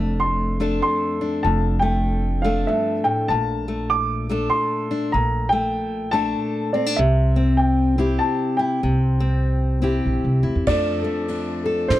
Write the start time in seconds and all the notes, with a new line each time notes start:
Already playing: F1 F2 A3 D4 A4 A5
0.20 C6
0.60 A3 D4 A4
0.82 C6
1.21 D4
1.43 F1 F2 A5
1.79 A3 G5
2.42 A3 D4 A4 F5
2.67 G2 E5
3.04 A2 G5
3.28 A#1 A#2 A5
3.68 A3
3.90 D6
4.29 A3 D4 A4
4.50 C6
4.91 D4
5.12 A#1 A#2 A#5
5.49 A3 G5
6.11 A3 D4 A4 A5
6.73 C4 D5
6.86 D4
6.96 C2 C3 E5
7.36 C4
7.57 G5
7.98 C4 E4 G4
8.19 A5
8.57 E4 G5
8.83 C2 C3
9.20 C4
9.82 C4 E4 G4
10.06 A#1
10.24 C2
10.43 D2 E4
10.55 E2
10.67 F2 F3 A3 D4 A4 D5, kick, crash
11.04 A3
11.28 D4, ride
11.66 A4
11.88 A2 D4 C5, snare, ride